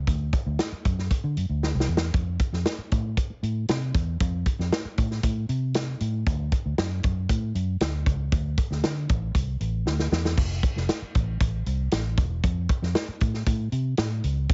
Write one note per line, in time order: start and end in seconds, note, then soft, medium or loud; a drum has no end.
0.07 0.30 D2 loud
0.07 kick medium
0.07 closed hi-hat medium
0.33 kick medium
0.33 closed hi-hat medium
0.46 0.57 D2 medium
0.59 snare loud
0.59 closed hi-hat medium
0.72 muted fingered electric bass stroke soft
0.85 1.07 F#2 loud
0.85 kick medium
0.85 closed hi-hat medium
0.99 snare soft
1.11 kick medium
1.11 closed hi-hat loud
1.24 1.35 D3 medium
1.37 1.48 F#2 medium
1.37 closed hi-hat medium
1.49 1.72 D2 medium
1.63 snare medium
1.75 1.86 C2 medium
1.80 snare medium
1.88 2.10 E2 medium
1.97 snare loud
2.14 2.36 F2 medium
2.14 kick loud
2.14 closed hi-hat medium
2.40 kick medium
2.40 closed hi-hat medium
2.53 2.64 F2 medium
2.53 snare soft
2.66 snare loud
2.66 closed hi-hat medium
2.78 muted fingered electric bass stroke soft
2.91 3.14 A2 medium
2.91 kick loud
2.91 closed hi-hat medium
3.17 kick medium
3.17 closed hi-hat loud
3.30 muted fingered electric bass stroke soft
3.43 3.65 A2 medium
3.43 closed hi-hat medium
3.68 3.91 C3 medium
3.68 snare loud
3.68 closed hi-hat loud
3.95 4.17 E2 loud
3.95 kick loud
3.95 closed hi-hat medium
4.20 4.43 F2 loud
4.20 kick loud
4.20 closed hi-hat medium
4.46 kick medium
4.46 closed hi-hat medium
4.59 4.70 F2 medium
4.59 snare soft
4.72 snare loud
4.72 closed hi-hat medium
4.85 muted fingered electric bass stroke medium
4.98 5.20 A2 loud
4.98 kick medium
4.98 closed hi-hat medium
5.11 snare soft
5.23 5.46 A2 medium
5.23 kick medium
5.23 closed hi-hat loud
5.49 5.93 C3 medium
5.49 closed hi-hat medium
5.74 snare loud
5.74 closed hi-hat loud
6.00 6.23 A2 loud
6.00 closed hi-hat medium
6.27 6.49 D2 loud
6.27 kick loud
6.27 closed hi-hat medium
6.52 kick medium
6.52 closed hi-hat medium
6.66 6.76 D2 medium
6.78 7.00 F#2 loud
6.78 snare loud
6.78 closed hi-hat medium
7.03 7.26 F#2 medium
7.03 kick medium
7.03 closed hi-hat medium
7.29 7.52 A2 medium
7.29 kick medium
7.29 closed hi-hat loud
7.55 7.77 F#2 medium
7.55 closed hi-hat medium
7.80 8.03 D2 medium
7.80 snare loud
7.80 closed hi-hat loud
8.06 8.29 C#2 loud
8.06 kick loud
8.06 closed hi-hat medium
8.32 8.54 D2 loud
8.32 kick loud
8.32 closed hi-hat medium
8.58 kick medium
8.58 closed hi-hat medium
8.71 8.82 D2 medium
8.71 snare soft
8.83 9.06 D3 loud
8.83 snare loud
8.83 closed hi-hat medium
9.09 9.32 A1 loud
9.09 kick loud
9.09 closed hi-hat medium
9.35 9.57 C2 medium
9.35 kick medium
9.35 closed hi-hat loud
9.60 9.83 A1 medium
9.60 closed hi-hat medium
9.86 10.08 D2 medium
9.86 snare medium
9.99 snare medium
10.12 10.34 E2 medium
10.12 snare medium
10.25 snare medium
10.37 10.60 F1 loud
10.37 kick loud
10.37 crash medium
10.63 kick loud
10.63 closed hi-hat medium
10.76 10.87 F1 medium
10.76 snare soft
10.89 snare loud
10.89 closed hi-hat loud
11.02 muted fingered electric bass stroke soft
11.15 11.37 A1 loud
11.15 kick medium
11.15 closed hi-hat medium
11.41 11.63 A1 loud
11.41 kick medium
11.41 closed hi-hat loud
11.66 11.89 C2 medium
11.66 closed hi-hat medium
11.91 12.14 A1 loud
11.91 snare loud
11.91 closed hi-hat loud
12.18 12.40 E1 loud
12.18 kick loud
12.18 closed hi-hat medium
12.44 12.66 F2 loud
12.44 kick loud
12.44 closed hi-hat medium
12.69 kick medium
12.69 closed hi-hat medium
12.82 12.93 F2 medium
12.82 snare soft
12.95 snare loud
12.95 closed hi-hat medium
13.08 muted fingered electric bass stroke soft
13.20 13.43 A2 medium
13.20 kick loud
13.20 closed hi-hat medium
13.34 snare soft
13.46 13.69 A2 medium
13.46 kick medium
13.46 closed hi-hat loud
13.72 13.94 C3 medium
13.72 closed hi-hat medium
13.97 14.20 A2 medium
13.97 snare loud
13.97 closed hi-hat loud
14.24 14.46 C#2 loud
14.24 closed hi-hat medium
14.49 14.54 D2 loud
14.49 kick loud
14.49 closed hi-hat medium